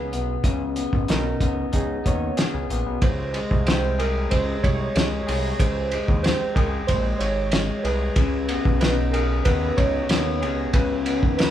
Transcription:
Already playing: C#2 C#3 B3 D#4 G#4 B4
0.12 B1 B3, closed hi-hat
0.44 C#2 C#3, kick, closed hi-hat
0.76 B3, closed hi-hat
0.93 G#1, kick
1.08 B1 D#4 A#4, snare, closed hi-hat
1.41 C#2 B3 A#4, kick, closed hi-hat
1.72 C#2 D#4 G#4, kick, closed hi-hat
2.04 D#2 B3 C#5, kick, closed hi-hat
2.37 G#4, snare, closed hi-hat
2.54 C#2
2.70 A#1 B3, closed hi-hat
2.86 B1
3.02 C#2 C5, kick, ride
3.34 G#3, ride
3.51 C2, kick
3.66 C4 C5, snare, ride
3.99 G#4 A#4, ride
4.30 C#2 G#3 C5, kick, ride
4.63 C2 C#5, kick, ride
4.95 C#2 G#3, snare, ride
5.27 C2 G#4, open hi-hat, ride
5.59 C#2 C5, kick, hi-hat pedal, ride
5.91 G#3, ride
6.08 D#2, kick
6.23 C4 C5, snare, ride
6.54 C#2 G#4 A#4, kick, ride
6.87 A#1 G#3 C5, kick, ride
7.18 G#1 C#5, ride
7.52 G#3, snare, ride
7.83 C2 G#4 B4, ride
8.16 C#2 C#3, kick, ride
8.49 B3, ride
8.65 B1, kick
8.80 D#4 B4, snare, ride
9.12 G#4 A#4, ride
9.45 D#2 B3 B4, kick, ride
9.77 C#2 D#4 C#5, kick, ride
10.09 D#2 B3, snare, ride
10.42 C#2 G#4, ride
10.73 C#2 C#3 B4, kick, ride
11.05 B3, ride
11.23 D#2, kick
11.37 D#4 B4, snare, ride

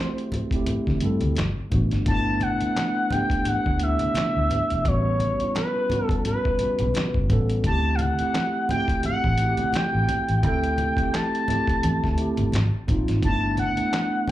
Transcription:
Already playing: A3 C4 E4 F#4 G4 C5
0.18 closed hi-hat
0.32 closed hi-hat, high conga, low conga
0.51 A3 C4 E4, kick, closed hi-hat
0.56 G4
0.66 closed hi-hat, muted conga, high conga, low conga
0.87 D3, kick, snare
1.00 G2 A3 C4 E4, closed hi-hat, muted conga
1.05 A4
1.21 D2, closed hi-hat, high conga
1.35 G1, snare, clap, closed hi-hat, muted conga, high conga
1.70 A1 A3 B3 D4, kick, closed hi-hat, low conga
1.75 F#4
1.91 G1, snare, closed hi-hat
2.05 G1 A3 B3 D4 A5, kick, closed hi-hat, muted conga
2.10 E4
2.40 F#5, closed hi-hat, muted conga, high conga
2.60 A3 B3 D4, muted fingered electric bass stroke, closed hi-hat
2.65 E4
2.76 snare, clap, closed hi-hat, muted conga
3.10 A3 B3 D4 G5, closed hi-hat, muted conga, high conga, low conga
3.15 G4
3.30 kick, closed hi-hat
3.45 F#5, muted fingered electric bass stroke, closed hi-hat, muted conga, high conga, low conga
3.66 D2, kick
3.79 A3 B3 D4 E5, closed hi-hat, muted conga
3.85 E4
3.99 closed hi-hat, high conga
4.15 muted fingered electric bass stroke, snare, clap, closed hi-hat, muted conga, high conga
4.37 D2
4.50 closed hi-hat, low conga
4.70 E1, closed hi-hat
4.85 A1 G3 B3 C#4 C#5, kick, closed hi-hat, muted conga
4.89 F#4
5.20 closed hi-hat, high conga
5.39 G3 B3 C#4, muted fingered electric bass stroke, closed hi-hat
5.43 E4
5.55 B4, snare, clap, closed hi-hat, muted conga
5.89 G3 B3 C#4, closed hi-hat, muted conga, high conga, low conga
5.93 F#4
6.05 A4, kick
6.11 closed hi-hat
6.25 B4, closed hi-hat, high conga, low conga
6.45 kick
6.58 G3 B3 C#4, muted fingered electric bass stroke, closed hi-hat, muted conga
6.63 F#4
6.79 B1, closed hi-hat, high conga
6.94 snare, clap, closed hi-hat, high conga
7.14 F#1, kick
7.29 A1 G3 B3 C#4, kick, closed hi-hat, muted conga, low conga
7.33 A4
7.49 closed hi-hat
7.64 D2 A3 C4 E4 A5, kick, closed hi-hat, muted conga
7.68 G4
7.95 F5, closed hi-hat, muted conga, high conga
8.01 F#5
8.18 A3 C4 E4, muted fingered electric bass stroke, closed hi-hat
8.23 G4
8.34 snare, clap, closed hi-hat, muted conga
8.69 A3 C4 E4 G5, closed hi-hat, muted conga, high conga, low conga
8.73 F#4
8.79 G4
8.88 kick, closed hi-hat
9.03 F#5, muted fingered electric bass stroke, closed hi-hat, muted conga, high conga, low conga
9.24 A1, kick
9.38 A3 C4 E4, closed hi-hat, muted conga
9.43 F#4
9.49 G4
9.57 closed hi-hat, high conga
9.73 G5, muted fingered electric bass stroke, snare, clap, closed hi-hat, muted conga, high conga
9.95 A1
10.09 closed hi-hat, muted conga, low conga
10.29 A1, closed hi-hat
10.43 D2 A3 C4 E4 G5, kick, closed hi-hat, muted conga
10.47 A4
10.64 closed hi-hat
10.78 closed hi-hat, muted conga, high conga
10.97 A3 C4 E4, muted fingered electric bass stroke, kick, closed hi-hat
11.02 G4
11.14 A5, snare, clap, closed hi-hat
11.35 closed hi-hat
11.48 A3 C4 E4, closed hi-hat, muted conga, high conga, low conga
11.52 G4
11.67 kick, closed hi-hat
11.83 E2, closed hi-hat, muted conga, high conga, low conga
12.04 D2, kick, snare
12.18 A3 C4 E4, closed hi-hat
12.22 G4
12.37 G1, closed hi-hat, high conga
12.52 G#1, snare, clap, closed hi-hat, muted conga, high conga
12.87 A#1 A#3 C4 D#4, kick, closed hi-hat, muted conga, low conga
12.92 F4
13.08 G#1, snare, closed hi-hat
13.22 G1 A3 B3 D4 A5, kick, closed hi-hat
13.26 E4
13.57 F#5, closed hi-hat, muted conga, high conga
13.77 A3 B3 D4, muted fingered electric bass stroke, closed hi-hat
13.81 E4
13.93 snare, clap, closed hi-hat, muted conga
14.27 A3, high conga, low conga

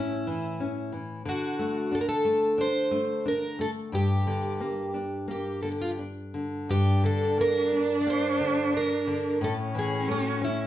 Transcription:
Already playing: A2 C#4 E4
0.27 E3
0.60 C#4
0.92 E3
1.25 D3 F#4
1.59 A3
1.92 D4 A4
2.01 A#4
2.09 A4
2.25 A3
2.58 D4 C5
2.91 A3
3.25 D4 A#4
3.59 A3 A4
3.92 G2 G4
4.27 D3
4.60 A#3
4.94 D4
5.28 A#3 G4
5.63 D3 A4
5.72 G4
5.81 F4
5.91 G4
5.99 D4
6.34 D3
6.68 G2 D4 G4
7.03 D3 A4
7.38 A#3 A#4
7.72 D4
8.01 D5
8.07 A#3 C5
8.40 D3
8.74 D4 A#4
9.07 D3
9.41 A2 C#4 A4
9.75 E3
9.79 G#4
10.08 A3 F#4
10.42 C#4 E4

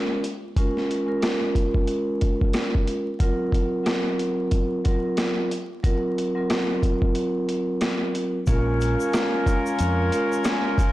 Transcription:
Already playing: G#3 C#4 F4 A#4
0.24 closed hi-hat
0.56 G#3 C#4 F4 A#4, kick, closed hi-hat
0.77 snare
0.91 closed hi-hat
1.06 G#3 C#4 F4 A#4
1.20 G#3 C#4 F4 A#4, cross-stick, snare, closed hi-hat
1.55 kick, closed hi-hat
1.74 kick
1.87 closed hi-hat
2.21 kick, closed hi-hat
2.41 kick
2.53 cross-stick, snare, closed hi-hat
2.75 kick
2.87 closed hi-hat
3.19 F#3 C4 F4 A#4, kick, closed hi-hat
3.52 kick, closed hi-hat
3.83 F#3 C4 F4 A#4, cross-stick, snare, closed hi-hat
4.19 closed hi-hat
4.51 kick, closed hi-hat
4.84 F#3 C4 F4 A#4, kick, closed hi-hat
5.17 cross-stick, snare, closed hi-hat
5.51 closed hi-hat
5.83 F#3 C4 F4 A#4, kick, closed hi-hat
6.18 closed hi-hat
6.35 F#3 C4 F4 A#4
6.50 F#3 C4 F4 A#4, cross-stick, snare, closed hi-hat
6.83 kick, closed hi-hat
7.02 kick
7.15 closed hi-hat
7.49 closed hi-hat
7.81 cross-stick, snare, closed hi-hat
8.15 closed hi-hat
8.47 A#1 G#3 C#4 F4 A#4 F5 G#5 C#6, kick, closed hi-hat, shaker
8.81 closed hi-hat, shaker
9.00 shaker
9.13 G#3 C#4 F4 A#4, cross-stick, snare, closed hi-hat, shaker
9.46 kick, closed hi-hat, shaker
9.66 shaker
9.79 F2, closed hi-hat, shaker
10.12 G#3 C#4 F4 A#4, closed hi-hat, shaker
10.32 shaker
10.44 cross-stick, snare, closed hi-hat, shaker
10.78 kick, closed hi-hat, shaker

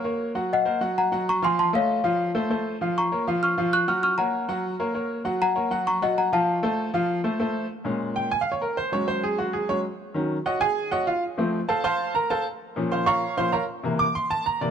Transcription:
Already playing: F#5 A#5
0.04 A#3 A#4 C#5
0.35 F#3 F#4 F#5
0.53 D#5 F#5
0.65 A#3 A#4 C5
0.81 F#3 F#4 F#5
0.98 F#5 A#5
1.12 F#3 F#4 F#5
1.29 A#5 C#6
1.42 F3 F4 F5 G#5 C6
1.59 A5 C6
1.73 A3 A4 C#5 D#5 F5
2.04 F3 F4 F5
2.35 A3 A4 C5
2.50 A3 A4 C5
2.81 F3 F4 F5
2.98 A#5 C#6
3.12 A#3 A#4 C#5
3.27 F3 F4 F5
3.43 C#6 F6
3.58 F3 F4 F5
3.73 C#6 F#6
3.87 F#3 F#4 F#5 C#6 F6
4.03 C#6 F6
4.18 A#3 A#4 C#5 F#5 A#5
4.48 F#3 F#4 F#5
4.80 A#3 A#4 C#5
4.94 A#3 A#4 C#5
5.25 F#3 F#4 F#5
5.42 F#5 A#5
5.55 A#3 A#4 C#5
5.71 F#3 F#4 F#5
5.87 A#5 C#6
6.02 F#3 F#4 D#5 F#5
6.18 F#5 A#5
6.32 F3 F4 F5 A5
6.63 A3 A4 C5
6.94 F3 F4 F5
7.24 A3 A4 C5
7.39 A3 A4 C5
7.84 A#2 G#3 C#4
8.16 G5
8.31 G#5
8.41 F5
8.52 C#5
8.62 A#4
8.77 C5
8.92 F#3 G#3 C#4 C#5
9.08 C5
9.23 G#4
9.38 F#4
9.53 G#4
9.69 F#3 G#3 C#4 C#5
10.14 D#3 F#3 C#4
10.46 F#4 C#5 D#5 F#5
10.61 G#4 G#5
10.91 F#4 C#5 D#5 F#5
11.07 F4 F5
11.37 F3 A3 C4
11.69 A4 C5 F5 A5
11.84 C5 F5 A5 C6
12.15 A#4 A#5
12.30 A4 C5 F5 A5
12.76 A#2 F3 C#4
12.92 C5 F5 C6
13.06 C#5 F5 A#5 C#6
13.37 A#2 F3 C#4 C5 F5 C6
13.52 A#4 C#5 F5 A#5
13.83 C3 E3 A#3
13.99 D6
14.15 C6
14.31 A5
14.46 A#5
14.61 C3 E3 A#3 D5

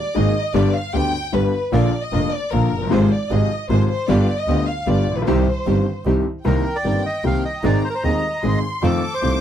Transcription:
Already playing: D5
0.15 G#1 G#2 D#3 G#3 A#3 D#4 G#4 A#4 D#5
0.54 G1 G2 D3 G3 B3 D4 G4 B4 D5
0.74 F5
0.93 D2 D3 G3 B3 D4 G4 B4 G5
1.32 G1 G2 D3 G3 B3 D4 G4 B4
1.72 A#1 A#2 D3 F3 A#3 D4 F4 A#4 D5
2.02 D#5
2.12 F1 F2 D3 F3 A#3 D4 F4 A#4
2.32 D5
2.51 A#1 A#2 D3 F3 A#3 D4 F4 A#4
2.72 F#1
2.77 F1
2.82 F#1
2.87 G1 G#2 C3 F3 G#3
2.91 G#1 C4 F4 G#4 C5
3.11 D5
3.30 G#1 G#2 C3 F3 G#3 C4 F4 G#4 D#5
3.69 G#1 G#2 C3 F3 G#3 C4 F4 G#4 C5
3.90 C5
4.08 G1 G2 D3 G3 B3 F4 G4 D5
4.37 D#5
4.47 D2 D3 G3 B3 F4 G4
4.67 F5
4.87 G1 G2 D3 G3 B3 F4 G4 D5
5.07 A#1
5.11 A1
5.16 A#1 B4
5.22 B1 C5
5.27 C2 C3 D#3 G3 C4 D#4 G4
5.65 G1 G2 D#3 G3 C4 D#4 G4
6.05 C2 C3 D#3 G3 C4 D#4 G4
6.44 C2 C3 D#3 A#3 C4 D#4 G4 A#4 G5
6.76 D5
6.84 G1 G2 D#3 A#3 C4 D#4 G4 A#4
7.06 D#5
7.24 C2 C3 D#3 A#3 C4 D#4 G4 A#4 F5
7.45 D#5
7.63 G#1 G#2 D#3 G#3 C4 D#4 G#4 D5 A#5
7.85 C5
7.90 A#4
7.95 C5
8.03 D#1 D#2 D#3 G#3 C4 D#4 G#4 D#5
8.43 G#1 G#2 D#3 G#3 C4 D#4 G#4 C6
8.82 F2 D#3 F3 A3 C4 D#4 F4 A4 D6
9.14 C5
9.22 C2 C3 D#3 A3 C4 D#4 F4 A4

